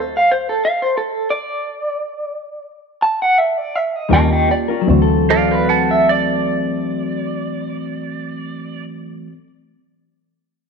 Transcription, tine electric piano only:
4.10 A#3 C#4 F4 G4
4.86 E3 A3 C4 F#4

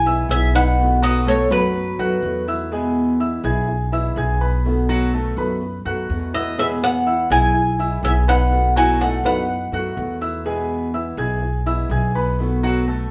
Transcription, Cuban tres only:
Already playing: G#5
0.31 E5
0.55 F#5
1.03 D#5
1.28 C#5
1.52 B4
6.34 D#5
6.59 E5
6.84 F#5
7.32 G#5
8.05 E5
8.29 F#5
8.77 G#5
9.01 F#5
9.26 F#5

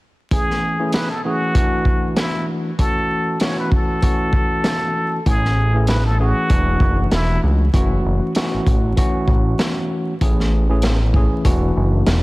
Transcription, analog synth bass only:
5.26 A1
6.50 E1
6.80 F#1
7.12 E1
7.43 C#2
7.74 F#1
8.05 F#1
8.54 A1
8.67 A1
9.28 A1
10.21 A1
11.45 E1
11.76 F#1
12.07 E1

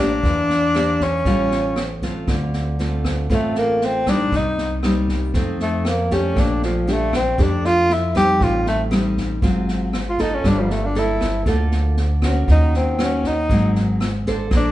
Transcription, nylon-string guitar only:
Already playing: A2
0.00 A#3 D4 G4
0.23 E3
0.74 A#3 D4 G4
1.26 A2 G3 C#4 F4
2.03 A3 C4 F4
2.28 D3
2.79 A3 C4 F4
3.30 A2 A3 C4 F4
4.07 G3 A#3 D#4
4.32 C3
4.84 G3 A#3 D#4
5.35 F2 D#3 A3 C4
6.11 A3 D4 G4
6.37 A#2
6.87 A3 D4 G4
7.38 F2 A3 D4 G4
8.15 G3 C4 D#4
8.40 A2
8.91 G3 C4 D#4
9.42 G#2 F#3 C4 F4
10.19 A#3 F4 A4
10.45 G3
10.95 A#3 A4
11.46 D3 A#3 F4 A4
12.23 A#3 C#4 F#4
12.48 D#3
12.99 A#3 C#4 F#4
13.51 G#2 F#3 A#3 C4
14.27 D4 A4 C5
14.51 A#3

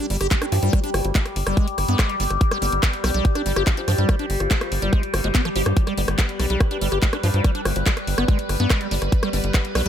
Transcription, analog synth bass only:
0.10 G1
0.21 G1
0.52 G2
0.63 G2
0.94 G1
1.05 G1
1.36 G1
1.47 G1
1.78 G1
1.88 G2
2.20 G1
2.30 G1
2.62 G1
2.72 G1
3.04 B1
3.14 B1
3.46 G1
3.56 G1
3.88 G2
3.98 G2
4.30 G1
4.40 G1
4.72 G1
4.82 G1
5.14 G1
5.24 G1
5.56 G1
5.66 G2
5.98 G1
6.08 G1
6.40 B1
6.50 B1
6.82 G1
6.92 G1
7.23 G2
7.34 G2
7.65 G1
7.76 G1
8.07 G1
8.18 G1
8.49 G1
8.60 G2
8.91 G1
9.02 G1
9.33 G1
9.44 G1
9.75 B1

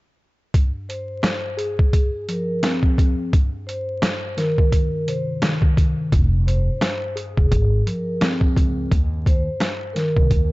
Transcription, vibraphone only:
0.89 C5
1.57 G#4
2.31 A#4
3.67 C5
4.37 A#4
5.08 C5
6.47 C5
7.16 G#4
7.86 A#4
9.27 C5
9.93 A#4

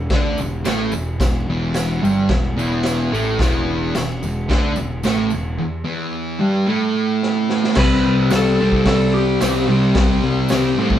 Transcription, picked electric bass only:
0.10 D2
0.39 E1
0.67 A1
0.94 E1
1.21 E1
1.48 E1
2.03 G1
2.30 E1
2.58 E1
3.13 A1
3.40 E1
3.96 E1
4.25 E1
4.50 D2
4.78 E1
5.05 A1
5.34 E1
7.77 C2
8.07 C2
8.33 C2
8.62 C2
8.86 C2
9.42 C2
9.69 C2
9.95 C2
10.24 C2
10.51 C2
10.78 A2

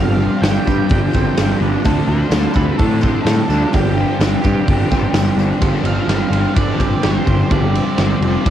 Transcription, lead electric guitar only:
Already playing: F5
0.42 G5
1.86 A4
2.08 C5
2.56 B4
2.78 A4
3.02 C5
3.23 A4
3.72 G4
5.86 F5
6.58 D5
7.03 C5
7.52 D5

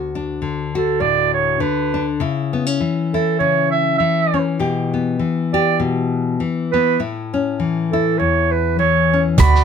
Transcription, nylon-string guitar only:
Already playing: D2 F#4
0.15 D4
0.42 D3
0.75 F#4
1.00 A2
1.60 D3
1.94 D4
2.20 C#3 E4
2.53 B3
2.66 C#4
2.80 E3
3.14 E4
3.40 C#3
4.00 E3
4.34 C#4
4.59 B2 G4
4.94 B3
5.19 E3
5.54 G4
5.80 B2
6.40 E3
6.74 B3
7.00 A2 E4
7.34 C#4
7.60 E3
7.93 E4
8.20 E2
8.79 E3
9.13 C#4

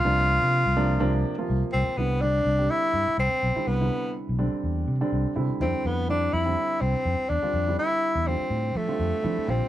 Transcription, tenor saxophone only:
Already playing: F4
1.72 C4
1.97 B3
2.21 D4
2.70 E4
3.19 C4
3.67 B3
5.61 C4
5.86 B3
6.10 D4
6.33 E4
6.81 C4
7.29 D4
7.79 E4
8.27 C4
8.76 A3
9.50 C4

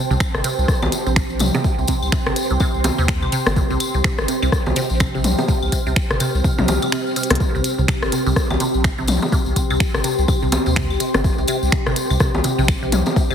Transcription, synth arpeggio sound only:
0.11 C3
0.34 C3
0.44 C3
0.68 C3
0.82 C3
1.06 C3
1.16 C3
1.40 C3
1.54 C3
1.78 C3
1.88 C3
2.12 C3
2.26 C3
2.50 C3
2.60 C3
2.84 C3
2.98 C3
3.22 C3
3.32 C3
3.56 C3
3.70 C3
3.94 C3
4.04 C3
4.28 C3
4.42 C3
4.66 C3
4.76 C3
5.00 C3
5.15 C3
5.39 C3
5.48 C3
5.72 C3
5.87 C3
6.11 C3
6.20 C3
6.44 C3
6.59 C3
6.83 C3
6.92 C3
7.16 C3
7.30 C3
7.40 C3
7.55 C3
7.79 C3
7.88 C3
8.12 C3
8.26 C3
8.50 C3
8.60 C3
8.84 C3
8.98 C3
9.22 C3
9.32 C3
9.56 C3
9.70 C3
9.94 C3
10.04 C3
10.28 C3
10.42 C3
10.66 C3
10.76 C3
11.00 C3
11.14 C3
11.38 C3
11.48 C3
11.72 C3
11.86 C3
12.10 C3
12.20 C3
12.44 C3
12.58 C3
12.83 C3
12.92 C3
13.16 C3
13.30 C3

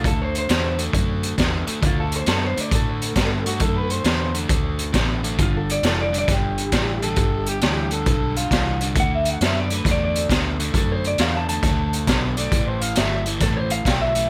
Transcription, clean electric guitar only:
0.07 A4
0.22 C5
0.38 C5
1.87 F4
2.00 A4
2.16 C5
2.29 A4
2.44 C5
2.61 D5
2.75 A4
5.42 F4
5.57 A4
5.72 D5
5.87 A4
6.01 D5
6.18 D5
6.31 G4
9.00 F#5
9.15 E5
9.30 F#5
9.44 E5
9.60 D5
9.75 B4
9.91 D5
10.05 D5
10.78 A4
10.92 C5
11.07 D5
11.21 F5
11.37 A5
11.49 A5
13.43 A4
13.57 C5
13.72 F5
13.87 G5
14.01 E5

